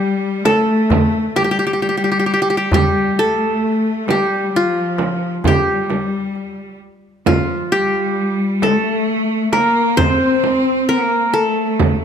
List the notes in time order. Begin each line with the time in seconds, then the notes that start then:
Already playing: G3 G4
0.45 A3 A4, darbuka tek, frame drum
0.90 darbuka dum, frame drum
1.36 G3 G4, darbuka tek, frame drum
1.44 G4
1.51 G4
1.59 G4
1.67 G4
1.73 G4
1.82 G4, darbuka ka
1.89 G4
1.97 G4
2.04 G4
2.12 G4
2.19 G4
2.26 G4
2.34 G4
2.42 G4
2.50 G4
2.57 G4
2.72 G3 G4, darbuka dum, frame drum
3.18 A3 A4, darbuka ka
3.41 darbuka ka
4.08 G3 G4, darbuka tek, frame drum
4.54 F3 F4, darbuka ka
4.98 darbuka tek, frame drum
5.44 G3 G4, darbuka dum, frame drum
5.90 darbuka tek, frame drum
6.35 darbuka ka
7.26 F3 F4, frame drum, darbuka dum
7.71 G3 G4
7.94 darbuka ka
8.62 A3 A4, darbuka tek, frame drum
9.07 darbuka ka
9.52 A#3 A#4, darbuka tek, frame drum
9.97 C4 C5, frame drum, darbuka dum
10.44 darbuka tek, frame drum
10.88 A#3 A#4, darbuka ka
11.33 A3 A4
11.80 frame drum, darbuka dum